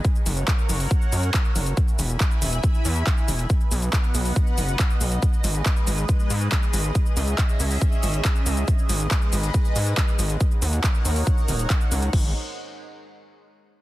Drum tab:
CC |----------------|----------------|----------------|----------------|
HH |x-oxx-oo--oxx-ox|x-oxx-oxx-oxx-ox|x-oxx-oox-oxx-ox|x-oxx-oxx-oxx-ox|
SH |xxxxxxxxxxxxxxxx|xxxxxxxxxxxxxxxx|xxxxxxxxxxxxxxxx|xxxxxxxxxxxxxxxx|
CP |----x-------x---|----x-------x---|----x-------x---|----x-------x---|
BD |o---o---o---o---|o---o---o---o---|o---o---o---o---|o---o---o---o---|

CC |----------------|----------------|----------------|x---------------|
HH |x-oxx-oo--oxx-ox|x-oxx-oxx-oxx-ox|x-oxx-oox-oxx-ox|----------------|
SH |xxxxxxxxxxxxxxxx|xxxxxxxxxxxxxxxx|xxxxxxxxxxxxxxxx|----------------|
CP |----x-------x---|----x-------x---|----x-------x---|----------------|
BD |o---o---o---o---|o---o---o---o---|o---o---o---o---|o---------------|